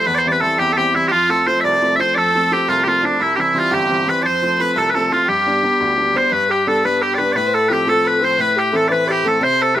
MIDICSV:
0, 0, Header, 1, 5, 480
1, 0, Start_track
1, 0, Tempo, 346420
1, 91, Time_signature, 6, 3, 24, 8
1, 13579, End_track
2, 0, Start_track
2, 0, Title_t, "Flute"
2, 0, Program_c, 0, 73
2, 8510, Note_on_c, 0, 72, 61
2, 8752, Note_on_c, 0, 71, 62
2, 8773, Note_off_c, 0, 72, 0
2, 9001, Note_on_c, 0, 67, 70
2, 9022, Note_off_c, 0, 71, 0
2, 9237, Note_off_c, 0, 67, 0
2, 9244, Note_on_c, 0, 69, 61
2, 9479, Note_on_c, 0, 71, 71
2, 9500, Note_off_c, 0, 69, 0
2, 9732, Note_on_c, 0, 67, 65
2, 9753, Note_off_c, 0, 71, 0
2, 9953, Note_on_c, 0, 71, 76
2, 9974, Note_off_c, 0, 67, 0
2, 10178, Note_off_c, 0, 71, 0
2, 10186, Note_on_c, 0, 71, 78
2, 10453, Note_on_c, 0, 69, 87
2, 10474, Note_off_c, 0, 71, 0
2, 10911, Note_off_c, 0, 69, 0
2, 10928, Note_on_c, 0, 69, 77
2, 11394, Note_on_c, 0, 72, 69
2, 11414, Note_off_c, 0, 69, 0
2, 11618, Note_on_c, 0, 71, 69
2, 11639, Note_off_c, 0, 72, 0
2, 11868, Note_on_c, 0, 67, 80
2, 11889, Note_off_c, 0, 71, 0
2, 12089, Note_on_c, 0, 69, 70
2, 12109, Note_off_c, 0, 67, 0
2, 12311, Note_off_c, 0, 69, 0
2, 12319, Note_on_c, 0, 71, 86
2, 12566, Note_off_c, 0, 71, 0
2, 12581, Note_on_c, 0, 67, 67
2, 12816, Note_on_c, 0, 69, 61
2, 12837, Note_off_c, 0, 67, 0
2, 13033, Note_off_c, 0, 69, 0
2, 13041, Note_on_c, 0, 74, 62
2, 13091, Note_on_c, 0, 72, 67
2, 13105, Note_off_c, 0, 74, 0
2, 13531, Note_on_c, 0, 67, 64
2, 13552, Note_off_c, 0, 72, 0
2, 13579, Note_off_c, 0, 67, 0
2, 13579, End_track
3, 0, Start_track
3, 0, Title_t, "Bagpipes"
3, 0, Program_c, 1, 109
3, 86, Note_on_c, 1, 71, 104
3, 202, Note_off_c, 1, 71, 0
3, 203, Note_on_c, 1, 74, 85
3, 251, Note_on_c, 1, 72, 85
3, 252, Note_off_c, 1, 74, 0
3, 381, Note_off_c, 1, 72, 0
3, 381, Note_on_c, 1, 74, 99
3, 442, Note_off_c, 1, 74, 0
3, 442, Note_on_c, 1, 71, 99
3, 564, Note_off_c, 1, 71, 0
3, 564, Note_on_c, 1, 69, 80
3, 809, Note_off_c, 1, 69, 0
3, 809, Note_on_c, 1, 67, 87
3, 1000, Note_off_c, 1, 67, 0
3, 1000, Note_on_c, 1, 69, 101
3, 1062, Note_off_c, 1, 69, 0
3, 1062, Note_on_c, 1, 67, 101
3, 1311, Note_off_c, 1, 67, 0
3, 1311, Note_on_c, 1, 64, 90
3, 1493, Note_off_c, 1, 64, 0
3, 1493, Note_on_c, 1, 67, 105
3, 1543, Note_off_c, 1, 67, 0
3, 1543, Note_on_c, 1, 65, 105
3, 1800, Note_off_c, 1, 65, 0
3, 1800, Note_on_c, 1, 69, 80
3, 2033, Note_off_c, 1, 69, 0
3, 2033, Note_on_c, 1, 72, 75
3, 2221, Note_off_c, 1, 72, 0
3, 2221, Note_on_c, 1, 76, 95
3, 2272, Note_off_c, 1, 76, 0
3, 2272, Note_on_c, 1, 74, 95
3, 2709, Note_off_c, 1, 74, 0
3, 2709, Note_on_c, 1, 76, 94
3, 2771, Note_off_c, 1, 76, 0
3, 2771, Note_on_c, 1, 72, 94
3, 2972, Note_off_c, 1, 72, 0
3, 2972, Note_on_c, 1, 74, 105
3, 3018, Note_off_c, 1, 74, 0
3, 3018, Note_on_c, 1, 69, 105
3, 3498, Note_off_c, 1, 69, 0
3, 3498, Note_on_c, 1, 67, 72
3, 3723, Note_off_c, 1, 67, 0
3, 3723, Note_on_c, 1, 65, 83
3, 3929, Note_off_c, 1, 65, 0
3, 3930, Note_on_c, 1, 67, 92
3, 3989, Note_off_c, 1, 67, 0
3, 3989, Note_on_c, 1, 65, 92
3, 4226, Note_off_c, 1, 65, 0
3, 4226, Note_on_c, 1, 62, 81
3, 4461, Note_off_c, 1, 62, 0
3, 4461, Note_on_c, 1, 64, 87
3, 4649, Note_off_c, 1, 64, 0
3, 4649, Note_on_c, 1, 67, 78
3, 4706, Note_off_c, 1, 67, 0
3, 4706, Note_on_c, 1, 64, 78
3, 4967, Note_off_c, 1, 64, 0
3, 4967, Note_on_c, 1, 65, 70
3, 5177, Note_off_c, 1, 65, 0
3, 5177, Note_on_c, 1, 67, 81
3, 5670, Note_off_c, 1, 67, 0
3, 5670, Note_on_c, 1, 71, 84
3, 5850, Note_off_c, 1, 71, 0
3, 5850, Note_on_c, 1, 74, 88
3, 5900, Note_off_c, 1, 74, 0
3, 5900, Note_on_c, 1, 72, 88
3, 6386, Note_off_c, 1, 72, 0
3, 6386, Note_on_c, 1, 71, 75
3, 6623, Note_off_c, 1, 71, 0
3, 6623, Note_on_c, 1, 69, 95
3, 6791, Note_off_c, 1, 69, 0
3, 6791, Note_on_c, 1, 71, 79
3, 6853, Note_off_c, 1, 71, 0
3, 6853, Note_on_c, 1, 69, 79
3, 7098, Note_off_c, 1, 69, 0
3, 7098, Note_on_c, 1, 65, 84
3, 7322, Note_off_c, 1, 65, 0
3, 7322, Note_on_c, 1, 67, 77
3, 8549, Note_off_c, 1, 67, 0
3, 8549, Note_on_c, 1, 72, 78
3, 8760, Note_off_c, 1, 72, 0
3, 8760, Note_on_c, 1, 71, 91
3, 9020, Note_off_c, 1, 71, 0
3, 9020, Note_on_c, 1, 67, 57
3, 9247, Note_off_c, 1, 67, 0
3, 9247, Note_on_c, 1, 69, 78
3, 9497, Note_off_c, 1, 69, 0
3, 9497, Note_on_c, 1, 71, 90
3, 9726, Note_off_c, 1, 71, 0
3, 9726, Note_on_c, 1, 67, 75
3, 9898, Note_off_c, 1, 67, 0
3, 9898, Note_on_c, 1, 74, 77
3, 9948, Note_off_c, 1, 74, 0
3, 9948, Note_on_c, 1, 71, 77
3, 10146, Note_off_c, 1, 71, 0
3, 10146, Note_on_c, 1, 74, 89
3, 10194, Note_off_c, 1, 74, 0
3, 10194, Note_on_c, 1, 71, 89
3, 10454, Note_off_c, 1, 71, 0
3, 10454, Note_on_c, 1, 69, 75
3, 10649, Note_off_c, 1, 69, 0
3, 10649, Note_on_c, 1, 71, 78
3, 10704, Note_off_c, 1, 71, 0
3, 10704, Note_on_c, 1, 67, 78
3, 10928, Note_off_c, 1, 67, 0
3, 10928, Note_on_c, 1, 69, 87
3, 11190, Note_off_c, 1, 69, 0
3, 11190, Note_on_c, 1, 71, 82
3, 11416, Note_off_c, 1, 71, 0
3, 11416, Note_on_c, 1, 72, 90
3, 11645, Note_off_c, 1, 72, 0
3, 11645, Note_on_c, 1, 71, 103
3, 11898, Note_off_c, 1, 71, 0
3, 11898, Note_on_c, 1, 67, 72
3, 12132, Note_off_c, 1, 67, 0
3, 12132, Note_on_c, 1, 69, 82
3, 12307, Note_off_c, 1, 69, 0
3, 12307, Note_on_c, 1, 74, 88
3, 12357, Note_off_c, 1, 74, 0
3, 12357, Note_on_c, 1, 71, 88
3, 12578, Note_off_c, 1, 71, 0
3, 12578, Note_on_c, 1, 74, 80
3, 12626, Note_off_c, 1, 74, 0
3, 12626, Note_on_c, 1, 67, 80
3, 12855, Note_off_c, 1, 67, 0
3, 12855, Note_on_c, 1, 69, 72
3, 13070, Note_off_c, 1, 69, 0
3, 13070, Note_on_c, 1, 72, 101
3, 13329, Note_off_c, 1, 72, 0
3, 13329, Note_on_c, 1, 69, 81
3, 13510, Note_off_c, 1, 69, 0
3, 13511, Note_on_c, 1, 71, 82
3, 13557, Note_off_c, 1, 71, 0
3, 13579, End_track
4, 0, Start_track
4, 0, Title_t, "Violin"
4, 0, Program_c, 2, 40
4, 82, Note_on_c, 2, 71, 96
4, 259, Note_off_c, 2, 71, 0
4, 429, Note_on_c, 2, 71, 71
4, 573, Note_off_c, 2, 71, 0
4, 583, Note_on_c, 2, 69, 84
4, 800, Note_off_c, 2, 69, 0
4, 815, Note_on_c, 2, 67, 77
4, 1055, Note_off_c, 2, 67, 0
4, 1074, Note_on_c, 2, 67, 67
4, 1291, Note_off_c, 2, 67, 0
4, 1312, Note_on_c, 2, 64, 76
4, 1527, Note_off_c, 2, 64, 0
4, 1540, Note_on_c, 2, 65, 84
4, 1996, Note_off_c, 2, 65, 0
4, 2037, Note_on_c, 2, 72, 80
4, 2251, Note_off_c, 2, 72, 0
4, 2263, Note_on_c, 2, 74, 74
4, 2720, Note_off_c, 2, 74, 0
4, 2755, Note_on_c, 2, 72, 65
4, 2971, Note_off_c, 2, 72, 0
4, 2981, Note_on_c, 2, 69, 87
4, 3656, Note_off_c, 2, 69, 0
4, 3702, Note_on_c, 2, 65, 72
4, 3945, Note_off_c, 2, 65, 0
4, 3956, Note_on_c, 2, 65, 64
4, 4182, Note_on_c, 2, 62, 75
4, 4203, Note_off_c, 2, 65, 0
4, 4410, Note_off_c, 2, 62, 0
4, 4418, Note_on_c, 2, 64, 80
4, 4664, Note_off_c, 2, 64, 0
4, 4676, Note_on_c, 2, 64, 75
4, 4937, Note_on_c, 2, 65, 88
4, 4958, Note_off_c, 2, 64, 0
4, 5143, Note_on_c, 2, 67, 78
4, 5164, Note_off_c, 2, 65, 0
4, 5637, Note_off_c, 2, 67, 0
4, 5650, Note_on_c, 2, 71, 76
4, 5863, Note_off_c, 2, 71, 0
4, 5871, Note_on_c, 2, 72, 93
4, 6327, Note_off_c, 2, 72, 0
4, 6356, Note_on_c, 2, 71, 87
4, 6576, Note_off_c, 2, 71, 0
4, 6588, Note_on_c, 2, 69, 82
4, 6830, Note_off_c, 2, 69, 0
4, 6855, Note_on_c, 2, 69, 63
4, 7065, Note_off_c, 2, 69, 0
4, 7074, Note_on_c, 2, 65, 62
4, 7294, Note_off_c, 2, 65, 0
4, 7305, Note_on_c, 2, 67, 71
4, 8230, Note_off_c, 2, 67, 0
4, 8515, Note_on_c, 2, 72, 64
4, 8734, Note_off_c, 2, 72, 0
4, 8749, Note_on_c, 2, 71, 77
4, 8989, Note_off_c, 2, 71, 0
4, 9008, Note_on_c, 2, 67, 59
4, 9224, Note_off_c, 2, 67, 0
4, 9236, Note_on_c, 2, 69, 83
4, 9454, Note_off_c, 2, 69, 0
4, 9486, Note_on_c, 2, 71, 76
4, 9717, Note_off_c, 2, 71, 0
4, 9725, Note_on_c, 2, 67, 66
4, 9954, Note_on_c, 2, 71, 72
4, 9975, Note_off_c, 2, 67, 0
4, 10175, Note_off_c, 2, 71, 0
4, 10183, Note_on_c, 2, 71, 79
4, 10347, Note_on_c, 2, 72, 70
4, 10367, Note_off_c, 2, 71, 0
4, 10517, Note_on_c, 2, 71, 76
4, 10537, Note_off_c, 2, 72, 0
4, 10661, Note_off_c, 2, 71, 0
4, 10669, Note_on_c, 2, 67, 78
4, 10887, Note_off_c, 2, 67, 0
4, 10904, Note_on_c, 2, 69, 77
4, 11153, Note_on_c, 2, 71, 69
4, 11174, Note_off_c, 2, 69, 0
4, 11368, Note_off_c, 2, 71, 0
4, 11377, Note_on_c, 2, 72, 78
4, 11599, Note_off_c, 2, 72, 0
4, 11614, Note_on_c, 2, 71, 85
4, 11856, Note_off_c, 2, 71, 0
4, 11876, Note_on_c, 2, 67, 64
4, 12092, Note_off_c, 2, 67, 0
4, 12100, Note_on_c, 2, 69, 77
4, 12320, Note_off_c, 2, 69, 0
4, 12328, Note_on_c, 2, 71, 73
4, 12828, Note_on_c, 2, 69, 65
4, 12849, Note_off_c, 2, 71, 0
4, 13058, Note_off_c, 2, 69, 0
4, 13063, Note_on_c, 2, 72, 87
4, 13318, Note_on_c, 2, 69, 74
4, 13339, Note_off_c, 2, 72, 0
4, 13545, Note_off_c, 2, 69, 0
4, 13579, End_track
5, 0, Start_track
5, 0, Title_t, "Upright piano"
5, 0, Program_c, 3, 0
5, 90, Note_on_c, 3, 40, 70
5, 348, Note_on_c, 3, 52, 47
5, 354, Note_on_c, 3, 55, 42
5, 362, Note_on_c, 3, 60, 51
5, 558, Note_off_c, 3, 52, 0
5, 565, Note_off_c, 3, 55, 0
5, 567, Note_off_c, 3, 40, 0
5, 572, Note_off_c, 3, 60, 0
5, 579, Note_on_c, 3, 52, 57
5, 585, Note_on_c, 3, 55, 47
5, 593, Note_on_c, 3, 60, 51
5, 807, Note_on_c, 3, 40, 71
5, 973, Note_off_c, 3, 52, 0
5, 977, Note_off_c, 3, 55, 0
5, 982, Note_off_c, 3, 60, 0
5, 1067, Note_on_c, 3, 52, 51
5, 1074, Note_on_c, 3, 55, 42
5, 1077, Note_on_c, 3, 60, 54
5, 1282, Note_off_c, 3, 52, 0
5, 1286, Note_off_c, 3, 55, 0
5, 1288, Note_off_c, 3, 40, 0
5, 1294, Note_off_c, 3, 60, 0
5, 1303, Note_on_c, 3, 52, 44
5, 1306, Note_on_c, 3, 55, 42
5, 1315, Note_on_c, 3, 60, 50
5, 1491, Note_off_c, 3, 52, 0
5, 1493, Note_off_c, 3, 55, 0
5, 1498, Note_off_c, 3, 60, 0
5, 1539, Note_on_c, 3, 41, 65
5, 1786, Note_on_c, 3, 53, 40
5, 1792, Note_on_c, 3, 57, 39
5, 1799, Note_on_c, 3, 60, 45
5, 2011, Note_off_c, 3, 53, 0
5, 2016, Note_off_c, 3, 41, 0
5, 2021, Note_off_c, 3, 57, 0
5, 2025, Note_off_c, 3, 60, 0
5, 2032, Note_on_c, 3, 53, 50
5, 2042, Note_on_c, 3, 57, 46
5, 2045, Note_on_c, 3, 60, 60
5, 2278, Note_on_c, 3, 36, 65
5, 2424, Note_off_c, 3, 53, 0
5, 2430, Note_off_c, 3, 57, 0
5, 2432, Note_off_c, 3, 60, 0
5, 2521, Note_on_c, 3, 53, 46
5, 2527, Note_on_c, 3, 57, 48
5, 2534, Note_on_c, 3, 60, 53
5, 2738, Note_off_c, 3, 53, 0
5, 2738, Note_off_c, 3, 57, 0
5, 2744, Note_off_c, 3, 60, 0
5, 2747, Note_off_c, 3, 36, 0
5, 2758, Note_on_c, 3, 53, 42
5, 2759, Note_on_c, 3, 57, 41
5, 2765, Note_on_c, 3, 60, 51
5, 2991, Note_on_c, 3, 41, 63
5, 3149, Note_off_c, 3, 53, 0
5, 3149, Note_off_c, 3, 57, 0
5, 3153, Note_off_c, 3, 60, 0
5, 3258, Note_on_c, 3, 53, 45
5, 3263, Note_on_c, 3, 57, 38
5, 3267, Note_on_c, 3, 60, 42
5, 3461, Note_off_c, 3, 53, 0
5, 3464, Note_off_c, 3, 41, 0
5, 3466, Note_off_c, 3, 57, 0
5, 3471, Note_off_c, 3, 60, 0
5, 3482, Note_on_c, 3, 53, 51
5, 3487, Note_on_c, 3, 57, 43
5, 3492, Note_on_c, 3, 60, 61
5, 3717, Note_on_c, 3, 36, 78
5, 3872, Note_off_c, 3, 53, 0
5, 3875, Note_off_c, 3, 57, 0
5, 3878, Note_off_c, 3, 60, 0
5, 3968, Note_on_c, 3, 53, 47
5, 3976, Note_on_c, 3, 57, 43
5, 3979, Note_on_c, 3, 60, 52
5, 4172, Note_off_c, 3, 53, 0
5, 4180, Note_off_c, 3, 57, 0
5, 4182, Note_off_c, 3, 60, 0
5, 4189, Note_off_c, 3, 36, 0
5, 4193, Note_on_c, 3, 53, 42
5, 4201, Note_on_c, 3, 57, 44
5, 4203, Note_on_c, 3, 60, 56
5, 4382, Note_off_c, 3, 53, 0
5, 4387, Note_off_c, 3, 57, 0
5, 4388, Note_off_c, 3, 60, 0
5, 4440, Note_on_c, 3, 36, 66
5, 4675, Note_on_c, 3, 52, 44
5, 4680, Note_on_c, 3, 55, 41
5, 4685, Note_on_c, 3, 60, 47
5, 4882, Note_off_c, 3, 52, 0
5, 4892, Note_off_c, 3, 55, 0
5, 4893, Note_off_c, 3, 60, 0
5, 4903, Note_on_c, 3, 52, 52
5, 4911, Note_off_c, 3, 36, 0
5, 4913, Note_on_c, 3, 55, 52
5, 4914, Note_on_c, 3, 60, 54
5, 5142, Note_on_c, 3, 31, 75
5, 5301, Note_off_c, 3, 52, 0
5, 5307, Note_off_c, 3, 55, 0
5, 5308, Note_off_c, 3, 60, 0
5, 5392, Note_on_c, 3, 52, 45
5, 5394, Note_on_c, 3, 55, 45
5, 5402, Note_on_c, 3, 60, 50
5, 5610, Note_off_c, 3, 52, 0
5, 5611, Note_off_c, 3, 55, 0
5, 5618, Note_off_c, 3, 60, 0
5, 5622, Note_off_c, 3, 31, 0
5, 5631, Note_on_c, 3, 52, 46
5, 5632, Note_on_c, 3, 55, 44
5, 5639, Note_on_c, 3, 60, 54
5, 5821, Note_off_c, 3, 52, 0
5, 5822, Note_off_c, 3, 55, 0
5, 5827, Note_off_c, 3, 60, 0
5, 5863, Note_on_c, 3, 41, 59
5, 6128, Note_on_c, 3, 53, 43
5, 6138, Note_on_c, 3, 57, 39
5, 6140, Note_on_c, 3, 60, 56
5, 6343, Note_off_c, 3, 41, 0
5, 6346, Note_off_c, 3, 53, 0
5, 6347, Note_off_c, 3, 57, 0
5, 6354, Note_off_c, 3, 60, 0
5, 6366, Note_on_c, 3, 53, 50
5, 6368, Note_on_c, 3, 57, 45
5, 6374, Note_on_c, 3, 60, 55
5, 6597, Note_on_c, 3, 36, 73
5, 6756, Note_off_c, 3, 53, 0
5, 6757, Note_off_c, 3, 57, 0
5, 6761, Note_off_c, 3, 60, 0
5, 6854, Note_on_c, 3, 53, 53
5, 6864, Note_on_c, 3, 60, 53
5, 6865, Note_on_c, 3, 57, 42
5, 7066, Note_off_c, 3, 53, 0
5, 7070, Note_off_c, 3, 36, 0
5, 7074, Note_off_c, 3, 57, 0
5, 7075, Note_off_c, 3, 60, 0
5, 7087, Note_on_c, 3, 53, 46
5, 7095, Note_on_c, 3, 57, 44
5, 7096, Note_on_c, 3, 60, 51
5, 7271, Note_off_c, 3, 53, 0
5, 7276, Note_off_c, 3, 57, 0
5, 7277, Note_off_c, 3, 60, 0
5, 7323, Note_on_c, 3, 43, 67
5, 7570, Note_on_c, 3, 55, 38
5, 7576, Note_on_c, 3, 59, 39
5, 7587, Note_on_c, 3, 62, 52
5, 7782, Note_off_c, 3, 55, 0
5, 7792, Note_off_c, 3, 43, 0
5, 7792, Note_off_c, 3, 59, 0
5, 7798, Note_off_c, 3, 62, 0
5, 7803, Note_on_c, 3, 55, 53
5, 7813, Note_on_c, 3, 59, 52
5, 7819, Note_on_c, 3, 62, 51
5, 8042, Note_on_c, 3, 38, 66
5, 8193, Note_off_c, 3, 55, 0
5, 8199, Note_off_c, 3, 59, 0
5, 8203, Note_off_c, 3, 62, 0
5, 8277, Note_on_c, 3, 55, 48
5, 8282, Note_on_c, 3, 59, 43
5, 8287, Note_on_c, 3, 62, 53
5, 8488, Note_off_c, 3, 55, 0
5, 8495, Note_off_c, 3, 62, 0
5, 8496, Note_off_c, 3, 59, 0
5, 8509, Note_on_c, 3, 55, 45
5, 8512, Note_off_c, 3, 38, 0
5, 8516, Note_on_c, 3, 62, 49
5, 8517, Note_on_c, 3, 59, 45
5, 8700, Note_off_c, 3, 55, 0
5, 8704, Note_off_c, 3, 62, 0
5, 8705, Note_off_c, 3, 59, 0
5, 8753, Note_on_c, 3, 43, 67
5, 9242, Note_on_c, 3, 55, 53
5, 9243, Note_on_c, 3, 59, 42
5, 9245, Note_on_c, 3, 62, 54
5, 9465, Note_off_c, 3, 55, 0
5, 9467, Note_off_c, 3, 59, 0
5, 9471, Note_off_c, 3, 62, 0
5, 9486, Note_on_c, 3, 55, 52
5, 9488, Note_on_c, 3, 59, 54
5, 9492, Note_on_c, 3, 62, 62
5, 9938, Note_off_c, 3, 55, 0
5, 9947, Note_off_c, 3, 59, 0
5, 9951, Note_off_c, 3, 62, 0
5, 9959, Note_on_c, 3, 55, 44
5, 9968, Note_on_c, 3, 59, 43
5, 9972, Note_on_c, 3, 62, 56
5, 10147, Note_off_c, 3, 43, 0
5, 10183, Note_off_c, 3, 55, 0
5, 10184, Note_on_c, 3, 45, 66
5, 10188, Note_off_c, 3, 59, 0
5, 10190, Note_off_c, 3, 62, 0
5, 10663, Note_on_c, 3, 53, 56
5, 10676, Note_on_c, 3, 57, 44
5, 10679, Note_on_c, 3, 60, 58
5, 10884, Note_off_c, 3, 53, 0
5, 10885, Note_off_c, 3, 57, 0
5, 10896, Note_off_c, 3, 60, 0
5, 10905, Note_on_c, 3, 53, 57
5, 10906, Note_on_c, 3, 57, 49
5, 10917, Note_on_c, 3, 60, 58
5, 11359, Note_off_c, 3, 53, 0
5, 11361, Note_off_c, 3, 57, 0
5, 11375, Note_off_c, 3, 60, 0
5, 11380, Note_on_c, 3, 53, 47
5, 11382, Note_on_c, 3, 57, 44
5, 11396, Note_on_c, 3, 60, 49
5, 11578, Note_off_c, 3, 45, 0
5, 11611, Note_off_c, 3, 53, 0
5, 11612, Note_off_c, 3, 57, 0
5, 11618, Note_on_c, 3, 45, 66
5, 11619, Note_off_c, 3, 60, 0
5, 12093, Note_on_c, 3, 52, 55
5, 12098, Note_on_c, 3, 57, 49
5, 12103, Note_on_c, 3, 60, 61
5, 12316, Note_off_c, 3, 52, 0
5, 12317, Note_off_c, 3, 57, 0
5, 12323, Note_off_c, 3, 60, 0
5, 12337, Note_on_c, 3, 52, 54
5, 12338, Note_on_c, 3, 57, 47
5, 12344, Note_on_c, 3, 60, 55
5, 12784, Note_off_c, 3, 52, 0
5, 12786, Note_off_c, 3, 57, 0
5, 12796, Note_off_c, 3, 60, 0
5, 12805, Note_on_c, 3, 52, 47
5, 12807, Note_on_c, 3, 57, 40
5, 12817, Note_on_c, 3, 60, 52
5, 13010, Note_off_c, 3, 45, 0
5, 13032, Note_on_c, 3, 48, 66
5, 13039, Note_off_c, 3, 52, 0
5, 13040, Note_off_c, 3, 57, 0
5, 13045, Note_off_c, 3, 60, 0
5, 13513, Note_on_c, 3, 55, 50
5, 13520, Note_on_c, 3, 60, 49
5, 13528, Note_on_c, 3, 64, 55
5, 13579, Note_off_c, 3, 48, 0
5, 13579, Note_off_c, 3, 55, 0
5, 13579, Note_off_c, 3, 60, 0
5, 13579, Note_off_c, 3, 64, 0
5, 13579, End_track
0, 0, End_of_file